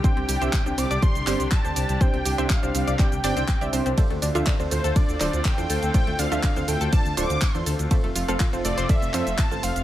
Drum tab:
RD |----------------|----------------|x---x---x---x---|x---x---x---x---|
HH |xxoxxxoxxxoxxxox|xxoxxxoxxxoxxxox|xxoxxxoxxxoxxxox|xxoxxxoxxxoxxxox|
SH |x-xxxxxxxxxxxxxx|x-xxxxxxxxxxxxxx|x-xxxxxxxxxxxxxx|x-xxxxxxxxxxxxxx|
CP |----x-----x-x---|----x---x---x---|----x-----x-x---|----x-------x---|
BD |o---o---o---o---|o---o---o---o---|o---o---o---o---|o---o---o---o---|

RD |x---x---x---x---|
HH |xxoxxxoxxxoxxxox|
SH |x-xxxxxxxxxxxxxx|
CP |----x-----x-x---|
BD |o---o---o---o---|